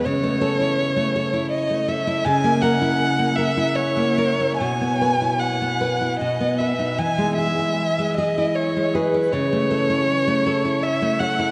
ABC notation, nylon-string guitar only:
X:1
M:3/4
L:1/16
Q:1/4=79
K:Alyd
V:1 name="Nylon-string guitar"
C, A, A E2 A, A E2 A, A E | C, ^A, ^A E2 A, A E2 A, A E | B,, B, B E2 B, B E B,, B, B D | E, G, G E2 G, G E2 G, G E |
C, A, A E2 A, A E2 A, A E |]